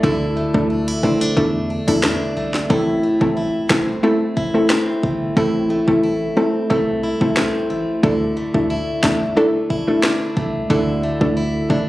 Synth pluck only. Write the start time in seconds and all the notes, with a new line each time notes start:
0.03 A3 D4 E4 A4
0.54 A3 D4 E4 A4
1.03 A3 D4 E4 A4
1.37 A3 D4 E4 A4
1.88 A3 D4 E4 A4
2.70 A3 C4 E4 A4
3.21 A3 C4 E4 A4
3.70 A3 C4 E4 A4
4.03 A3 C4 E4 A4
4.54 A3 C4 E4 A4
5.36 A3 C4 E4 A4
5.88 A3 C4 E4 A4
6.37 A3 C4 E4 A4
6.70 A3 C4 E4 A4
7.21 A3 C4 E4 A4
8.03 A3 D4 E4 A4
8.54 A3 D4 E4 A4
9.03 A3 D4 E4 A4
9.36 A3 D4 E4 A4
9.87 A3 D4 E4 A4
10.70 A3 D4 E4 A4
11.21 A3 D4 E4 A4
11.70 A3 D4 E4 A4